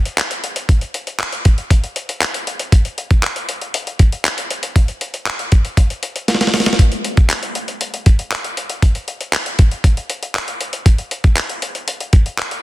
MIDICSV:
0, 0, Header, 1, 2, 480
1, 0, Start_track
1, 0, Tempo, 508475
1, 650, Time_signature, 4, 2, 24, 8
1, 11914, End_track
2, 0, Start_track
2, 0, Title_t, "Drums"
2, 52, Note_on_c, 9, 42, 58
2, 146, Note_off_c, 9, 42, 0
2, 170, Note_on_c, 9, 39, 118
2, 171, Note_on_c, 9, 42, 91
2, 265, Note_off_c, 9, 39, 0
2, 266, Note_off_c, 9, 42, 0
2, 291, Note_on_c, 9, 42, 67
2, 385, Note_off_c, 9, 42, 0
2, 412, Note_on_c, 9, 42, 67
2, 506, Note_off_c, 9, 42, 0
2, 528, Note_on_c, 9, 42, 66
2, 623, Note_off_c, 9, 42, 0
2, 650, Note_on_c, 9, 36, 127
2, 650, Note_on_c, 9, 42, 99
2, 744, Note_off_c, 9, 36, 0
2, 745, Note_off_c, 9, 42, 0
2, 768, Note_on_c, 9, 42, 57
2, 863, Note_off_c, 9, 42, 0
2, 890, Note_on_c, 9, 42, 67
2, 984, Note_off_c, 9, 42, 0
2, 1010, Note_on_c, 9, 42, 50
2, 1105, Note_off_c, 9, 42, 0
2, 1128, Note_on_c, 9, 39, 123
2, 1128, Note_on_c, 9, 42, 80
2, 1223, Note_off_c, 9, 39, 0
2, 1223, Note_off_c, 9, 42, 0
2, 1251, Note_on_c, 9, 42, 62
2, 1345, Note_off_c, 9, 42, 0
2, 1370, Note_on_c, 9, 42, 70
2, 1373, Note_on_c, 9, 36, 102
2, 1464, Note_off_c, 9, 42, 0
2, 1467, Note_off_c, 9, 36, 0
2, 1490, Note_on_c, 9, 42, 47
2, 1585, Note_off_c, 9, 42, 0
2, 1609, Note_on_c, 9, 36, 99
2, 1611, Note_on_c, 9, 42, 91
2, 1704, Note_off_c, 9, 36, 0
2, 1706, Note_off_c, 9, 42, 0
2, 1733, Note_on_c, 9, 42, 57
2, 1827, Note_off_c, 9, 42, 0
2, 1850, Note_on_c, 9, 42, 78
2, 1944, Note_off_c, 9, 42, 0
2, 1973, Note_on_c, 9, 42, 57
2, 2067, Note_off_c, 9, 42, 0
2, 2090, Note_on_c, 9, 39, 115
2, 2092, Note_on_c, 9, 42, 96
2, 2185, Note_off_c, 9, 39, 0
2, 2186, Note_off_c, 9, 42, 0
2, 2212, Note_on_c, 9, 42, 64
2, 2307, Note_off_c, 9, 42, 0
2, 2333, Note_on_c, 9, 42, 73
2, 2427, Note_off_c, 9, 42, 0
2, 2450, Note_on_c, 9, 42, 66
2, 2544, Note_off_c, 9, 42, 0
2, 2571, Note_on_c, 9, 36, 121
2, 2572, Note_on_c, 9, 42, 104
2, 2665, Note_off_c, 9, 36, 0
2, 2666, Note_off_c, 9, 42, 0
2, 2690, Note_on_c, 9, 42, 55
2, 2785, Note_off_c, 9, 42, 0
2, 2812, Note_on_c, 9, 42, 67
2, 2906, Note_off_c, 9, 42, 0
2, 2931, Note_on_c, 9, 42, 49
2, 2932, Note_on_c, 9, 36, 108
2, 3026, Note_off_c, 9, 42, 0
2, 3027, Note_off_c, 9, 36, 0
2, 3050, Note_on_c, 9, 39, 123
2, 3050, Note_on_c, 9, 42, 83
2, 3144, Note_off_c, 9, 39, 0
2, 3144, Note_off_c, 9, 42, 0
2, 3172, Note_on_c, 9, 42, 59
2, 3267, Note_off_c, 9, 42, 0
2, 3291, Note_on_c, 9, 42, 71
2, 3386, Note_off_c, 9, 42, 0
2, 3412, Note_on_c, 9, 42, 48
2, 3507, Note_off_c, 9, 42, 0
2, 3532, Note_on_c, 9, 42, 97
2, 3626, Note_off_c, 9, 42, 0
2, 3653, Note_on_c, 9, 42, 57
2, 3748, Note_off_c, 9, 42, 0
2, 3770, Note_on_c, 9, 42, 72
2, 3771, Note_on_c, 9, 36, 102
2, 3864, Note_off_c, 9, 42, 0
2, 3866, Note_off_c, 9, 36, 0
2, 3893, Note_on_c, 9, 42, 59
2, 3988, Note_off_c, 9, 42, 0
2, 4012, Note_on_c, 9, 39, 114
2, 4013, Note_on_c, 9, 42, 92
2, 4106, Note_off_c, 9, 39, 0
2, 4107, Note_off_c, 9, 42, 0
2, 4133, Note_on_c, 9, 42, 67
2, 4227, Note_off_c, 9, 42, 0
2, 4253, Note_on_c, 9, 42, 72
2, 4347, Note_off_c, 9, 42, 0
2, 4369, Note_on_c, 9, 42, 65
2, 4464, Note_off_c, 9, 42, 0
2, 4490, Note_on_c, 9, 36, 122
2, 4491, Note_on_c, 9, 42, 104
2, 4585, Note_off_c, 9, 36, 0
2, 4586, Note_off_c, 9, 42, 0
2, 4609, Note_on_c, 9, 42, 57
2, 4704, Note_off_c, 9, 42, 0
2, 4730, Note_on_c, 9, 42, 68
2, 4824, Note_off_c, 9, 42, 0
2, 4850, Note_on_c, 9, 42, 52
2, 4945, Note_off_c, 9, 42, 0
2, 4969, Note_on_c, 9, 39, 126
2, 4969, Note_on_c, 9, 42, 81
2, 5063, Note_off_c, 9, 39, 0
2, 5063, Note_off_c, 9, 42, 0
2, 5090, Note_on_c, 9, 42, 60
2, 5185, Note_off_c, 9, 42, 0
2, 5209, Note_on_c, 9, 42, 69
2, 5212, Note_on_c, 9, 36, 98
2, 5303, Note_off_c, 9, 42, 0
2, 5307, Note_off_c, 9, 36, 0
2, 5330, Note_on_c, 9, 42, 45
2, 5425, Note_off_c, 9, 42, 0
2, 5449, Note_on_c, 9, 36, 99
2, 5450, Note_on_c, 9, 42, 98
2, 5543, Note_off_c, 9, 36, 0
2, 5544, Note_off_c, 9, 42, 0
2, 5572, Note_on_c, 9, 42, 57
2, 5666, Note_off_c, 9, 42, 0
2, 5689, Note_on_c, 9, 42, 74
2, 5784, Note_off_c, 9, 42, 0
2, 5812, Note_on_c, 9, 42, 59
2, 5906, Note_off_c, 9, 42, 0
2, 5930, Note_on_c, 9, 38, 65
2, 5931, Note_on_c, 9, 42, 91
2, 5990, Note_off_c, 9, 38, 0
2, 5990, Note_on_c, 9, 38, 61
2, 6025, Note_off_c, 9, 42, 0
2, 6050, Note_off_c, 9, 38, 0
2, 6050, Note_on_c, 9, 38, 82
2, 6051, Note_on_c, 9, 42, 65
2, 6110, Note_off_c, 9, 38, 0
2, 6110, Note_on_c, 9, 38, 77
2, 6145, Note_off_c, 9, 42, 0
2, 6171, Note_off_c, 9, 38, 0
2, 6171, Note_on_c, 9, 38, 95
2, 6172, Note_on_c, 9, 46, 68
2, 6230, Note_off_c, 9, 38, 0
2, 6230, Note_on_c, 9, 38, 87
2, 6267, Note_off_c, 9, 46, 0
2, 6288, Note_on_c, 9, 42, 65
2, 6290, Note_off_c, 9, 38, 0
2, 6290, Note_on_c, 9, 38, 106
2, 6350, Note_off_c, 9, 38, 0
2, 6350, Note_on_c, 9, 38, 99
2, 6383, Note_off_c, 9, 42, 0
2, 6410, Note_on_c, 9, 36, 124
2, 6412, Note_on_c, 9, 42, 101
2, 6445, Note_off_c, 9, 38, 0
2, 6505, Note_off_c, 9, 36, 0
2, 6506, Note_off_c, 9, 42, 0
2, 6529, Note_on_c, 9, 42, 58
2, 6624, Note_off_c, 9, 42, 0
2, 6650, Note_on_c, 9, 42, 67
2, 6745, Note_off_c, 9, 42, 0
2, 6770, Note_on_c, 9, 42, 50
2, 6772, Note_on_c, 9, 36, 106
2, 6864, Note_off_c, 9, 42, 0
2, 6866, Note_off_c, 9, 36, 0
2, 6889, Note_on_c, 9, 39, 127
2, 6889, Note_on_c, 9, 42, 86
2, 6983, Note_off_c, 9, 39, 0
2, 6983, Note_off_c, 9, 42, 0
2, 7011, Note_on_c, 9, 42, 60
2, 7105, Note_off_c, 9, 42, 0
2, 7129, Note_on_c, 9, 42, 74
2, 7223, Note_off_c, 9, 42, 0
2, 7250, Note_on_c, 9, 42, 47
2, 7345, Note_off_c, 9, 42, 0
2, 7371, Note_on_c, 9, 42, 90
2, 7465, Note_off_c, 9, 42, 0
2, 7493, Note_on_c, 9, 42, 59
2, 7587, Note_off_c, 9, 42, 0
2, 7609, Note_on_c, 9, 42, 75
2, 7611, Note_on_c, 9, 36, 99
2, 7703, Note_off_c, 9, 42, 0
2, 7705, Note_off_c, 9, 36, 0
2, 7731, Note_on_c, 9, 42, 59
2, 7826, Note_off_c, 9, 42, 0
2, 7850, Note_on_c, 9, 39, 113
2, 7851, Note_on_c, 9, 42, 92
2, 7944, Note_off_c, 9, 39, 0
2, 7945, Note_off_c, 9, 42, 0
2, 7972, Note_on_c, 9, 42, 65
2, 8066, Note_off_c, 9, 42, 0
2, 8092, Note_on_c, 9, 42, 67
2, 8186, Note_off_c, 9, 42, 0
2, 8208, Note_on_c, 9, 42, 66
2, 8303, Note_off_c, 9, 42, 0
2, 8330, Note_on_c, 9, 36, 127
2, 8331, Note_on_c, 9, 42, 103
2, 8424, Note_off_c, 9, 36, 0
2, 8425, Note_off_c, 9, 42, 0
2, 8449, Note_on_c, 9, 42, 55
2, 8543, Note_off_c, 9, 42, 0
2, 8569, Note_on_c, 9, 42, 67
2, 8664, Note_off_c, 9, 42, 0
2, 8690, Note_on_c, 9, 42, 52
2, 8785, Note_off_c, 9, 42, 0
2, 8809, Note_on_c, 9, 39, 126
2, 8809, Note_on_c, 9, 42, 84
2, 8903, Note_off_c, 9, 39, 0
2, 8903, Note_off_c, 9, 42, 0
2, 8931, Note_on_c, 9, 42, 60
2, 9025, Note_off_c, 9, 42, 0
2, 9050, Note_on_c, 9, 42, 68
2, 9052, Note_on_c, 9, 36, 104
2, 9144, Note_off_c, 9, 42, 0
2, 9147, Note_off_c, 9, 36, 0
2, 9170, Note_on_c, 9, 42, 49
2, 9265, Note_off_c, 9, 42, 0
2, 9289, Note_on_c, 9, 36, 101
2, 9291, Note_on_c, 9, 42, 92
2, 9383, Note_off_c, 9, 36, 0
2, 9385, Note_off_c, 9, 42, 0
2, 9413, Note_on_c, 9, 42, 56
2, 9507, Note_off_c, 9, 42, 0
2, 9530, Note_on_c, 9, 42, 76
2, 9625, Note_off_c, 9, 42, 0
2, 9653, Note_on_c, 9, 42, 57
2, 9747, Note_off_c, 9, 42, 0
2, 9770, Note_on_c, 9, 39, 109
2, 9772, Note_on_c, 9, 42, 95
2, 9865, Note_off_c, 9, 39, 0
2, 9866, Note_off_c, 9, 42, 0
2, 9892, Note_on_c, 9, 42, 67
2, 9986, Note_off_c, 9, 42, 0
2, 10012, Note_on_c, 9, 42, 71
2, 10106, Note_off_c, 9, 42, 0
2, 10129, Note_on_c, 9, 42, 65
2, 10223, Note_off_c, 9, 42, 0
2, 10250, Note_on_c, 9, 36, 122
2, 10251, Note_on_c, 9, 42, 98
2, 10344, Note_off_c, 9, 36, 0
2, 10345, Note_off_c, 9, 42, 0
2, 10369, Note_on_c, 9, 42, 58
2, 10464, Note_off_c, 9, 42, 0
2, 10490, Note_on_c, 9, 42, 68
2, 10584, Note_off_c, 9, 42, 0
2, 10610, Note_on_c, 9, 42, 49
2, 10612, Note_on_c, 9, 36, 109
2, 10704, Note_off_c, 9, 42, 0
2, 10706, Note_off_c, 9, 36, 0
2, 10729, Note_on_c, 9, 39, 124
2, 10729, Note_on_c, 9, 42, 83
2, 10823, Note_off_c, 9, 39, 0
2, 10823, Note_off_c, 9, 42, 0
2, 10851, Note_on_c, 9, 42, 61
2, 10945, Note_off_c, 9, 42, 0
2, 10971, Note_on_c, 9, 42, 71
2, 11065, Note_off_c, 9, 42, 0
2, 11092, Note_on_c, 9, 42, 47
2, 11186, Note_off_c, 9, 42, 0
2, 11211, Note_on_c, 9, 42, 95
2, 11306, Note_off_c, 9, 42, 0
2, 11332, Note_on_c, 9, 42, 56
2, 11427, Note_off_c, 9, 42, 0
2, 11449, Note_on_c, 9, 42, 75
2, 11451, Note_on_c, 9, 36, 109
2, 11543, Note_off_c, 9, 42, 0
2, 11545, Note_off_c, 9, 36, 0
2, 11572, Note_on_c, 9, 42, 57
2, 11666, Note_off_c, 9, 42, 0
2, 11690, Note_on_c, 9, 39, 115
2, 11691, Note_on_c, 9, 42, 95
2, 11785, Note_off_c, 9, 39, 0
2, 11786, Note_off_c, 9, 42, 0
2, 11812, Note_on_c, 9, 42, 66
2, 11906, Note_off_c, 9, 42, 0
2, 11914, End_track
0, 0, End_of_file